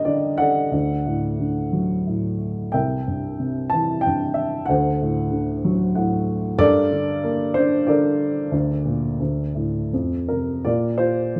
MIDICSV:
0, 0, Header, 1, 2, 480
1, 0, Start_track
1, 0, Tempo, 663717
1, 532, Time_signature, 3, 2, 24, 8
1, 2934, Tempo, 638978
1, 6294, Tempo, 668896
1, 6774, Tempo, 726392
1, 7734, Tempo, 686499
1, 8257, End_track
2, 0, Start_track
2, 0, Title_t, "Upright piano"
2, 0, Program_c, 0, 0
2, 0, Control_c, 0, 64, 127
2, 0, Note_on_c, 0, 43, 67
2, 0, Note_on_c, 0, 50, 48
2, 0, Note_on_c, 0, 58, 52
2, 0, Note_on_c, 0, 70, 75
2, 0, Note_on_c, 0, 74, 72
2, 0, Note_on_c, 0, 75, 82
2, 0, Note_on_c, 0, 79, 98
2, 36, Note_off_c, 0, 74, 0
2, 36, Note_on_c, 0, 74, 71
2, 44, Note_off_c, 0, 50, 0
2, 44, Note_on_c, 0, 50, 47
2, 271, Note_on_c, 0, 78, 96
2, 274, Note_off_c, 0, 74, 0
2, 284, Note_on_c, 0, 74, 60
2, 289, Note_on_c, 0, 69, 57
2, 500, Note_off_c, 0, 43, 0
2, 502, Note_off_c, 0, 58, 0
2, 513, Note_off_c, 0, 50, 0
2, 518, Note_on_c, 0, 38, 55
2, 539, Control_c, 0, 64, 0
2, 541, Note_off_c, 0, 75, 0
2, 542, Note_off_c, 0, 70, 0
2, 544, Note_off_c, 0, 79, 0
2, 652, Control_c, 0, 64, 127
2, 765, Note_on_c, 0, 45, 42
2, 1009, Note_on_c, 0, 50, 44
2, 1249, Note_on_c, 0, 54, 47
2, 1482, Note_off_c, 0, 45, 0
2, 1493, Note_on_c, 0, 45, 41
2, 1706, Note_off_c, 0, 78, 0
2, 1713, Note_off_c, 0, 74, 0
2, 1715, Note_off_c, 0, 69, 0
2, 1948, Note_off_c, 0, 38, 0
2, 1951, Note_off_c, 0, 50, 0
2, 1958, Note_off_c, 0, 54, 0
2, 1965, Note_off_c, 0, 45, 0
2, 1966, Note_on_c, 0, 79, 73
2, 1979, Note_on_c, 0, 36, 50
2, 1980, Note_on_c, 0, 76, 51
2, 1983, Note_on_c, 0, 70, 50
2, 1992, Control_c, 0, 64, 0
2, 2131, Control_c, 0, 64, 127
2, 2224, Note_on_c, 0, 43, 36
2, 2455, Note_on_c, 0, 48, 47
2, 2672, Note_off_c, 0, 76, 0
2, 2673, Note_off_c, 0, 70, 0
2, 2673, Note_on_c, 0, 81, 82
2, 2699, Note_on_c, 0, 52, 51
2, 2715, Note_off_c, 0, 79, 0
2, 2901, Note_on_c, 0, 79, 82
2, 2903, Note_off_c, 0, 81, 0
2, 2929, Note_off_c, 0, 43, 0
2, 2940, Note_on_c, 0, 43, 43
2, 3138, Note_off_c, 0, 79, 0
2, 3147, Note_on_c, 0, 76, 69
2, 3378, Note_off_c, 0, 48, 0
2, 3379, Note_off_c, 0, 36, 0
2, 3381, Note_off_c, 0, 76, 0
2, 3384, Note_on_c, 0, 78, 78
2, 3389, Note_off_c, 0, 52, 0
2, 3400, Note_off_c, 0, 43, 0
2, 3408, Note_on_c, 0, 69, 54
2, 3409, Note_on_c, 0, 72, 56
2, 3412, Note_on_c, 0, 38, 64
2, 3422, Control_c, 0, 64, 0
2, 3546, Control_c, 0, 64, 127
2, 3652, Note_on_c, 0, 45, 45
2, 3879, Note_on_c, 0, 50, 51
2, 4127, Note_on_c, 0, 54, 57
2, 4347, Note_off_c, 0, 78, 0
2, 4350, Note_off_c, 0, 45, 0
2, 4358, Note_on_c, 0, 78, 64
2, 4361, Note_on_c, 0, 45, 55
2, 4567, Note_off_c, 0, 69, 0
2, 4568, Note_off_c, 0, 72, 0
2, 4806, Note_off_c, 0, 50, 0
2, 4807, Note_off_c, 0, 78, 0
2, 4811, Note_off_c, 0, 38, 0
2, 4818, Note_off_c, 0, 54, 0
2, 4825, Note_off_c, 0, 45, 0
2, 4832, Note_on_c, 0, 43, 73
2, 4833, Note_on_c, 0, 69, 81
2, 4833, Note_on_c, 0, 74, 113
2, 4834, Note_on_c, 0, 70, 74
2, 4850, Control_c, 0, 64, 0
2, 4998, Control_c, 0, 64, 127
2, 5078, Note_on_c, 0, 50, 53
2, 5326, Note_on_c, 0, 58, 57
2, 5542, Note_off_c, 0, 69, 0
2, 5542, Note_off_c, 0, 70, 0
2, 5552, Note_on_c, 0, 72, 89
2, 5565, Note_on_c, 0, 62, 59
2, 5594, Note_off_c, 0, 74, 0
2, 5797, Note_on_c, 0, 74, 82
2, 5798, Note_off_c, 0, 50, 0
2, 5805, Note_on_c, 0, 69, 59
2, 5808, Note_off_c, 0, 72, 0
2, 5809, Note_on_c, 0, 50, 51
2, 5810, Note_on_c, 0, 70, 61
2, 6260, Note_off_c, 0, 43, 0
2, 6262, Note_off_c, 0, 58, 0
2, 6267, Note_off_c, 0, 62, 0
2, 6278, Note_off_c, 0, 50, 0
2, 6283, Note_on_c, 0, 38, 61
2, 6304, Control_c, 0, 64, 0
2, 6410, Control_c, 0, 64, 127
2, 6526, Note_on_c, 0, 46, 47
2, 6754, Note_off_c, 0, 38, 0
2, 6764, Note_off_c, 0, 46, 0
2, 6775, Note_on_c, 0, 38, 55
2, 6783, Control_c, 0, 64, 0
2, 6917, Control_c, 0, 64, 127
2, 7004, Note_on_c, 0, 45, 43
2, 7218, Note_off_c, 0, 74, 0
2, 7222, Note_off_c, 0, 69, 0
2, 7224, Note_off_c, 0, 70, 0
2, 7238, Note_off_c, 0, 38, 0
2, 7244, Note_off_c, 0, 45, 0
2, 7258, Note_on_c, 0, 41, 49
2, 7260, Control_c, 0, 64, 0
2, 7371, Control_c, 0, 64, 127
2, 7492, Note_on_c, 0, 70, 65
2, 7514, Note_on_c, 0, 48, 38
2, 7722, Note_off_c, 0, 41, 0
2, 7724, Note_off_c, 0, 70, 0
2, 7730, Note_on_c, 0, 74, 77
2, 7733, Note_on_c, 0, 65, 51
2, 7734, Note_off_c, 0, 48, 0
2, 7734, Note_on_c, 0, 70, 53
2, 7741, Note_on_c, 0, 46, 58
2, 7743, Control_c, 0, 64, 0
2, 7876, Control_c, 0, 64, 127
2, 7951, Note_off_c, 0, 65, 0
2, 7961, Note_on_c, 0, 72, 80
2, 7962, Note_on_c, 0, 65, 57
2, 7979, Note_off_c, 0, 74, 0
2, 8225, Note_on_c, 0, 53, 41
2, 8228, Note_on_c, 0, 62, 45
2, 8229, Note_on_c, 0, 58, 34
2, 8257, Note_off_c, 0, 46, 0
2, 8257, Note_off_c, 0, 53, 0
2, 8257, Note_off_c, 0, 58, 0
2, 8257, Note_off_c, 0, 62, 0
2, 8257, Note_off_c, 0, 65, 0
2, 8257, Note_off_c, 0, 70, 0
2, 8257, Note_off_c, 0, 72, 0
2, 8257, End_track
0, 0, End_of_file